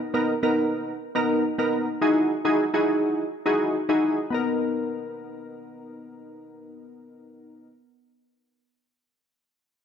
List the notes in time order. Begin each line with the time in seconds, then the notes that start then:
0.14 B3 D#4 A#4
0.43 B3 D#4 A#4
1.15 B3 D#4 A#4
1.58 B3 D#4 A#4
2.01 D#4 E4 F#4 G#4
2.45 D#4 E4 F#4 G#4
2.74 D#4 E4 F#4 G#4
3.46 D#4 E4 F#4 G#4
3.89 D#4 E4 F#4 G#4
4.30 B3 D#4 A#4